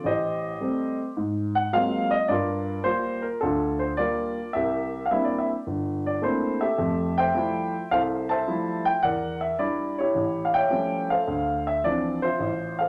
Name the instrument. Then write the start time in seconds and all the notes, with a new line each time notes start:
grand piano
0.04 A1 G4 C5 D#5
0.61 G3 A3 C4
1.17 G#2
1.55 F#5
1.73 F#3 G#3 A#3 C4 F4 F5
2.11 D#5
2.28 G2 F4 A#4 D5
2.84 G3 A#3 F4 C5
3.22 A#4
3.41 D2 D4 F4 A4
3.79 C5
3.97 G3 A#3 F4 A#4 D5
4.53 C2 G4 A#4 E5
5.06 F5
5.11 G3 A#3 C4 D4 E4 E5
5.24 D5
5.38 E5
5.67 G1
6.06 D5
6.22 A3 A#3 C4 D4 E4 C5
6.61 G4 A4 E5
6.78 F2 A3
7.18 C5 E5 G5
7.34 F3 G3 A3 E4
7.91 C2 A4 C5 F5
8.29 C5 E5 A5
8.48 F3 G3 A3 E4
8.85 G5
9.03 E2 A#4 D5 F#5
9.41 E5
9.59 G3 D4 E4 D5
9.98 E4 G4 C#5
10.15 A1
10.45 F5
10.54 C#5 E5 G5
10.70 F3 G3 A3 C#4
11.10 A4 C5 F5
11.27 D2
11.67 E5
11.84 E3 F3 C4 D4 D5
12.22 F4 C5 E5
12.39 A1
12.79 A4 C5 F5